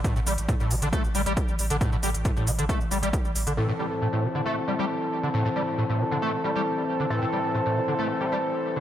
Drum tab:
HH |x-oxx-oxx-oxx-ox|x-oxx-oxx-oxx-ox|----------------|----------------|
SH |xxxxxxxxxxxxxxxx|xxxxxxxxxxxxxxxx|----------------|----------------|
BD |o---o---o---o---|o---o---o---o---|----------------|----------------|

HH |----------------|
SH |----------------|
BD |----------------|